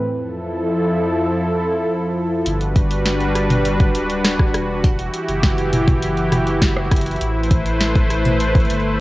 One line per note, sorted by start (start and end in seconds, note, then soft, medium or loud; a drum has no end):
0.08 2.44 F2 medium
0.08 2.44 F3 medium
0.08 2.44 E4 medium
0.08 2.44 A4 medium
2.46 3.90 G1 loud
2.46 4.81 G3 medium
2.46 4.81 D4 medium
2.46 7.17 F#4 medium
2.46 4.81 B4 medium
2.46 closed hi-hat medium
2.61 closed hi-hat soft
2.76 kick loud
2.76 closed hi-hat medium
2.91 closed hi-hat medium
3.05 snare loud
3.05 closed hi-hat medium
3.20 closed hi-hat soft
3.35 cross-stick medium
3.35 closed hi-hat medium
3.50 closed hi-hat medium
3.50 mid tom medium
3.65 closed hi-hat medium
3.80 kick loud
3.80 closed hi-hat soft
3.95 4.50 D1 loud
3.95 closed hi-hat medium
4.09 closed hi-hat medium
4.24 cross-stick medium
4.24 snare loud
4.24 closed hi-hat medium
4.39 kick loud
4.39 cross-stick medium
4.54 5.09 E1 medium
4.54 cross-stick medium
4.54 closed hi-hat medium
4.84 7.19 E3 medium
4.84 9.00 E4 medium
4.84 7.19 G4 medium
4.84 kick loud
4.84 closed hi-hat medium
4.99 closed hi-hat soft
5.13 closed hi-hat medium
5.28 7.17 F#1 medium
5.28 closed hi-hat medium
5.43 kick loud
5.43 snare loud
5.43 closed hi-hat medium
5.58 closed hi-hat soft
5.73 closed hi-hat medium
5.73 mid tom medium
5.88 kick loud
5.88 closed hi-hat medium
5.88 mid tom medium
6.03 closed hi-hat medium
6.17 closed hi-hat soft
6.32 cross-stick medium
6.32 closed hi-hat medium
6.32 mid tom medium
6.47 closed hi-hat medium
6.62 kick loud
6.62 snare loud
6.62 closed hi-hat medium
6.77 cross-stick medium
6.92 kick loud
6.92 cross-stick medium
6.92 closed hi-hat medium
6.97 closed hi-hat medium
7.01 closed hi-hat medium
7.06 closed hi-hat medium
7.11 closed hi-hat soft
7.16 closed hi-hat soft
7.21 8.65 A1 loud
7.21 9.00 A3 medium
7.21 9.00 B4 medium
7.21 9.00 C5 medium
7.21 closed hi-hat medium
7.44 closed hi-hat soft
7.51 kick loud
7.51 closed hi-hat medium
7.66 closed hi-hat medium
7.81 snare loud
7.81 closed hi-hat medium
7.96 kick loud
7.96 closed hi-hat soft
8.10 cross-stick medium
8.10 closed hi-hat medium
8.25 closed hi-hat medium
8.25 mid tom medium
8.40 closed hi-hat medium
8.55 kick loud
8.55 closed hi-hat soft
8.60 closed hi-hat soft
8.65 closed hi-hat soft
8.70 9.00 G1 loud
8.70 closed hi-hat medium
8.80 closed hi-hat soft